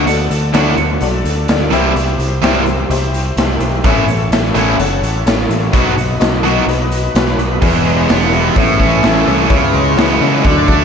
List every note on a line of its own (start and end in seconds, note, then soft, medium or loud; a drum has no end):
0.05 0.27 D2 medium
0.05 1.70 A3 medium
0.05 1.70 D4 medium
0.05 1.70 F#4 medium
0.05 0.46 F#4 medium
0.05 1.70 A4 medium
0.05 0.46 A4 medium
0.05 0.46 D5 medium
0.05 closed hi-hat medium
0.30 0.51 D2 medium
0.30 closed hi-hat medium
0.53 0.74 D2 medium
0.53 0.73 D3 medium
0.53 0.73 A3 medium
0.53 0.73 D4 medium
0.53 0.74 F#4 medium
0.53 0.93 F#4 medium
0.53 0.93 A4 medium
0.53 0.92 C#5 medium
0.53 snare loud
0.53 closed hi-hat medium
0.77 0.98 D2 medium
0.77 closed hi-hat medium
1.00 1.22 B1 medium
1.00 1.40 F#4 medium
1.00 1.40 A4 medium
1.00 1.40 D5 medium
1.00 closed hi-hat medium
1.24 1.45 D2 medium
1.24 closed hi-hat medium
1.48 1.69 D2 medium
1.48 1.73 F#4 medium
1.48 1.73 A4 medium
1.48 1.73 D5 medium
1.48 snare loud
1.48 closed hi-hat medium
1.71 1.92 C2 medium
1.71 1.91 C3 medium
1.71 1.91 E3 medium
1.71 1.92 G3 medium
1.71 1.92 C4 medium
1.71 1.87 C#4 medium
1.71 1.92 E4 medium
1.71 1.88 F4 medium
1.71 2.30 G4 medium
1.71 1.87 G#4 medium
1.71 2.30 C5 medium
1.71 1.88 C#5 medium
1.71 2.29 E5 medium
1.71 closed hi-hat medium
1.87 3.82 C4 medium
1.87 3.81 E4 medium
1.87 3.82 G4 medium
1.87 3.83 C5 medium
1.95 2.16 C2 medium
1.95 closed hi-hat medium
2.18 2.39 C2 medium
2.18 closed hi-hat medium
2.42 2.83 C2 medium
2.42 2.62 C3 medium
2.42 2.62 E3 medium
2.42 2.62 G3 medium
2.42 2.63 C4 medium
2.42 2.63 E4 medium
2.42 2.82 G4 medium
2.42 2.82 C5 medium
2.42 2.82 E5 medium
2.42 snare loud
2.42 closed hi-hat medium
2.66 closed hi-hat medium
2.90 3.30 C2 medium
2.90 3.29 G4 medium
2.90 3.29 C5 medium
2.90 3.28 E5 medium
2.90 closed hi-hat medium
3.14 closed hi-hat medium
3.37 3.57 C2 medium
3.37 3.76 G4 medium
3.37 3.76 C5 medium
3.37 3.76 E5 medium
3.37 snare loud
3.37 closed hi-hat medium
3.60 3.81 B1 medium
3.60 closed hi-hat medium
3.82 4.04 A1 medium
3.82 4.04 A2 medium
3.82 4.04 E3 medium
3.82 4.04 A3 loud
3.82 5.70 C#4 medium
3.82 4.04 C#4 medium
3.82 5.70 E4 medium
3.82 5.70 A4 medium
3.82 4.23 A4 medium
3.82 5.71 C#5 medium
3.82 4.23 C#5 medium
3.82 4.23 E5 medium
3.82 kick loud
3.82 closed hi-hat medium
3.86 4.05 E4 medium
4.06 4.27 A1 medium
4.06 closed hi-hat medium
4.30 4.51 A1 medium
4.30 4.70 A4 medium
4.30 4.70 C#5 medium
4.30 4.70 E5 loud
4.30 snare loud
4.30 closed hi-hat medium
4.55 4.75 A1 medium
4.55 4.74 A2 medium
4.55 4.74 E3 loud
4.55 4.74 A3 loud
4.55 4.75 C#4 loud
4.55 4.75 E4 loud
4.55 closed hi-hat medium
4.78 4.98 F#1 medium
4.78 5.17 A4 medium
4.78 5.17 C#5 medium
4.78 5.17 F#5 loud
4.78 closed hi-hat medium
5.02 5.22 A1 medium
5.02 closed hi-hat medium
5.25 5.46 A1 medium
5.25 5.64 A4 medium
5.25 5.64 C#5 medium
5.25 5.64 E5 medium
5.25 snare loud
5.25 closed hi-hat loud
5.49 5.70 A1 medium
5.49 closed hi-hat medium
5.71 5.93 B1 medium
5.71 5.92 B2 medium
5.71 5.92 F#3 medium
5.71 7.59 B3 medium
5.71 5.92 B3 medium
5.71 7.59 D#4 medium
5.71 5.92 D#4 medium
5.71 7.59 F#4 medium
5.71 5.92 F#4 medium
5.71 6.12 F#4 medium
5.71 7.59 B4 medium
5.71 6.11 B4 medium
5.71 6.12 D#5 medium
5.71 kick loud
5.71 closed hi-hat medium
5.97 6.17 B1 medium
5.97 closed hi-hat medium
6.20 6.60 B1 medium
6.20 6.58 F#4 medium
6.20 6.58 B4 medium
6.20 6.58 D#5 loud
6.20 snare loud
6.20 closed hi-hat loud
6.44 6.63 B2 medium
6.44 6.63 F#3 loud
6.44 6.63 B3 loud
6.44 6.63 D#4 loud
6.44 6.63 F#4 loud
6.44 closed hi-hat medium
6.67 7.07 B1 medium
6.67 7.06 F#4 medium
6.67 7.06 B4 medium
6.67 7.06 D#5 medium
6.67 closed hi-hat medium
6.91 closed hi-hat medium
7.15 7.35 B1 medium
7.15 7.53 F#4 medium
7.15 7.53 B4 medium
7.15 7.53 C#5 medium
7.15 snare loud
7.15 closed hi-hat medium
7.37 7.58 B1 medium
7.37 closed hi-hat medium
7.60 7.82 E1 medium
7.60 8.56 E2 medium
7.60 7.92 E3 medium
7.60 7.93 G#3 soft
7.60 7.93 B3 medium
7.60 8.00 E4 loud
7.60 8.00 G#4 loud
7.60 8.00 B4 loud
7.60 kick loud
7.60 crash loud
7.84 8.05 E1 medium
7.84 8.30 G#3 medium
7.84 open hi-hat medium
7.90 7.93 F#4 medium
7.94 8.09 G4 loud
8.09 8.49 E1 medium
8.09 8.56 E3 medium
8.09 8.56 B3 medium
8.09 8.25 D4 medium
8.09 8.28 E4 medium
8.09 8.28 G#4 medium
8.09 8.28 C#5 medium
8.09 snare loud
8.09 open hi-hat medium
8.27 8.41 E4 medium
8.32 8.56 E3 medium
8.32 8.56 G#3 medium
8.32 8.51 E4 medium
8.32 8.51 G#4 medium
8.32 8.51 B4 medium
8.32 open hi-hat medium
8.43 8.57 G4 medium
8.55 8.76 A1 medium
8.55 9.50 A2 medium
8.55 9.47 E3 soft
8.55 9.47 A3 soft
8.55 9.48 C#4 soft
8.55 8.93 E4 medium
8.55 8.93 A4 medium
8.55 8.94 C#5 medium
8.55 kick medium
8.55 open hi-hat medium
8.61 8.73 E4 medium
8.74 8.88 E4 medium
8.79 9.00 A1 medium
8.79 9.50 A3 medium
8.79 9.26 C#4 medium
8.79 kick medium
8.79 open hi-hat medium
8.89 9.34 E4 medium
9.03 9.23 A1 medium
9.03 9.50 A3 medium
9.03 9.50 C#4 medium
9.03 9.41 E4 medium
9.03 9.41 A4 medium
9.03 9.41 E5 medium
9.03 snare loud
9.03 open hi-hat medium
9.26 9.47 C2 medium
9.26 9.51 E3 medium
9.26 9.51 C#4 medium
9.26 open hi-hat medium
9.49 9.70 C#2 medium
9.49 10.45 C#3 medium
9.49 9.81 E3 medium
9.49 9.81 B3 soft
9.49 9.88 E4 loud
9.49 9.88 B4 medium
9.49 9.88 C#5 loud
9.49 kick loud
9.49 open hi-hat medium
9.73 9.94 C#2 medium
9.73 10.18 G#3 medium
9.73 open hi-hat soft
9.97 10.17 C#2 medium
9.97 10.43 E3 medium
9.97 10.45 B3 medium
9.97 10.16 E4 medium
9.97 10.16 B4 medium
9.97 10.16 C#5 medium
9.97 snare loud
9.97 open hi-hat medium
10.20 10.41 C#3 medium
10.20 10.44 E3 medium
10.20 10.44 G#3 medium
10.20 10.40 E4 medium
10.20 10.40 B4 medium
10.20 10.40 C#5 medium
10.20 open hi-hat medium
10.42 10.65 D2 medium
10.42 10.85 D3 medium
10.42 10.75 F#3 medium
10.42 10.76 A3 soft
10.42 10.77 D4 medium
10.42 10.83 F#4 medium
10.42 10.82 A4 medium
10.42 10.45 C#5 medium
10.42 10.82 D5 medium
10.42 kick medium
10.42 open hi-hat medium
10.47 10.85 D5 medium
10.68 10.85 D2 medium
10.68 10.85 A3 medium
10.68 10.85 D4 medium
10.68 kick medium
10.68 open hi-hat medium